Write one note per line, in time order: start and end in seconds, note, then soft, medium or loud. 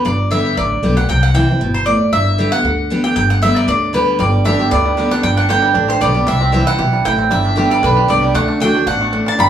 0.05 0.39 G1 medium
0.05 0.54 G2 medium
0.05 0.29 D5 medium
0.31 0.56 D3 medium
0.31 0.56 G3 medium
0.31 0.56 B3 medium
0.31 0.56 G4 medium
0.31 0.55 E5 medium
0.57 0.79 A1 medium
0.57 0.82 D3 medium
0.57 0.94 D5 medium
0.83 1.05 B1 medium
0.83 0.96 D3 medium
0.83 0.97 G3 medium
0.83 0.97 B3 medium
0.83 0.95 G4 loud
0.96 1.09 B3 medium
0.96 1.08 G4 medium
0.96 1.09 F#5 medium
1.09 1.43 C2 medium
1.09 1.58 C3 medium
1.09 1.22 G5 medium
1.23 1.34 F#5 medium
1.34 1.48 E3 medium
1.34 1.48 G3 medium
1.34 1.49 C4 medium
1.34 1.48 E4 medium
1.34 1.72 G5 loud
1.49 1.61 C4 soft
1.49 1.60 E4 medium
1.60 1.94 G1 medium
1.60 1.86 B2 medium
1.74 1.85 C5 medium
1.86 2.11 A2 medium
1.86 2.10 D5 loud
2.13 2.46 G1 medium
2.13 2.62 G2 medium
2.13 2.50 E5 medium
2.38 2.52 D3 medium
2.38 2.52 G3 medium
2.38 2.52 B3 medium
2.38 2.51 G4 medium
2.52 2.65 B3 medium
2.52 2.64 G4 medium
2.52 3.03 F#5 medium
2.64 2.98 D2 medium
2.64 2.89 D3 medium
2.90 3.04 D3 medium
2.90 3.04 G3 medium
2.90 3.04 B3 medium
2.90 3.03 G4 medium
3.04 3.16 B3 medium
3.04 3.15 G4 medium
3.04 3.15 G5 medium
3.16 3.50 G1 medium
3.16 3.66 G2 medium
3.16 3.30 G5 loud
3.30 3.42 F#5 medium
3.42 3.66 D3 medium
3.42 3.67 G3 medium
3.42 3.67 B3 loud
3.42 3.68 G4 medium
3.42 3.55 E5 loud
3.56 3.67 D5 medium
3.67 4.01 D2 medium
3.67 3.92 D3 medium
3.67 3.94 D5 medium
3.93 4.18 D3 medium
3.93 4.18 G3 medium
3.93 4.19 B3 medium
3.93 4.19 G4 medium
3.93 4.18 B4 medium
4.19 4.53 G1 loud
4.19 4.69 G2 medium
4.19 4.85 G3 medium
4.19 4.44 D5 medium
4.45 4.58 D3 medium
4.45 4.59 G3 medium
4.45 4.59 B3 medium
4.45 4.82 D4 medium
4.45 4.58 G4 loud
4.45 4.72 E5 medium
4.59 4.72 B3 medium
4.59 4.71 G4 medium
4.59 5.49 G4 medium
4.71 5.06 D2 medium
4.71 4.96 D3 medium
4.71 4.96 B3 medium
4.71 5.12 D5 loud
4.85 5.23 G3 medium
4.97 5.11 D3 medium
4.97 5.11 G3 medium
4.97 5.35 B3 medium
4.97 5.11 B3 medium
4.97 5.10 G4 medium
5.11 5.24 B3 medium
5.11 5.36 D4 medium
5.11 5.23 G4 medium
5.11 5.23 F#5 loud
5.23 5.57 G1 medium
5.23 5.73 G2 medium
5.23 5.62 G3 medium
5.23 5.36 G5 loud
5.37 5.73 D4 medium
5.37 5.48 F#5 medium
5.49 5.74 D3 medium
5.49 5.74 G3 medium
5.49 5.74 B3 loud
5.49 5.88 G4 medium
5.49 5.75 G4 medium
5.49 5.87 G5 loud
5.62 6.14 G3 medium
5.74 5.97 A1 medium
5.74 6.00 D3 medium
5.74 6.12 D4 medium
5.88 6.52 G4 medium
5.88 6.01 C5 medium
6.01 6.23 B1 medium
6.01 6.14 D3 medium
6.01 6.15 G3 medium
6.01 6.27 B3 medium
6.01 6.15 B3 loud
6.01 6.13 G4 medium
6.01 6.28 D5 loud
6.14 6.26 G3 medium
6.14 6.27 B3 medium
6.14 6.26 G4 medium
6.27 6.61 C2 medium
6.27 6.76 C3 medium
6.27 6.64 G3 medium
6.27 6.67 E5 medium
6.41 6.76 C4 medium
6.52 6.77 E3 medium
6.52 6.78 G3 loud
6.52 6.78 C4 loud
6.52 6.78 E4 medium
6.52 6.77 G4 medium
6.67 7.02 E4 medium
6.67 7.05 F#5 loud
6.78 7.01 B1 medium
6.78 7.04 B2 medium
6.78 7.16 G4 medium
6.93 7.29 G3 medium
7.05 7.27 A1 medium
7.05 7.30 A2 medium
7.05 7.31 E4 medium
7.05 7.29 G5 medium
7.18 7.31 C4 medium
7.30 7.65 G1 medium
7.30 7.80 G2 medium
7.30 7.68 G3 medium
7.30 7.68 E5 medium
7.45 7.83 D4 medium
7.56 7.81 D3 medium
7.56 7.82 G3 medium
7.56 7.82 B3 loud
7.56 7.94 G4 medium
7.56 7.82 G4 medium
7.71 8.06 G3 medium
7.71 7.83 D5 medium
7.83 8.05 B1 medium
7.83 8.07 D3 medium
7.83 8.48 D4 medium
7.83 8.10 B4 medium
7.97 8.32 G4 medium
8.08 8.31 C2 medium
8.08 8.33 D3 medium
8.08 8.34 G3 medium
8.08 8.34 B3 medium
8.08 8.34 G4 medium
8.08 8.33 D5 loud
8.23 8.34 G3 medium
8.34 8.68 D2 loud
8.34 8.59 D3 medium
8.34 8.72 A3 medium
8.34 8.59 F#5 loud
8.48 8.60 D4 medium
8.60 8.74 D3 medium
8.60 8.74 A3 medium
8.60 8.74 D4 medium
8.60 8.75 D4 medium
8.60 8.73 F#4 medium
8.60 8.85 G5 loud
8.74 8.86 D4 medium
8.74 8.87 D4 soft
8.74 8.86 F#4 medium
8.86 9.20 A1 medium
8.86 9.11 B2 medium
8.86 9.12 D4 medium
8.86 9.28 F#5 medium
9.01 9.36 A3 medium
9.13 9.37 A2 medium
9.13 9.26 D4 medium
9.26 9.49 D4 medium
9.26 9.38 A5 loud
9.39 9.49 G1 medium
9.39 9.49 G2 medium
9.39 9.49 G3 medium
9.39 9.49 B5 loud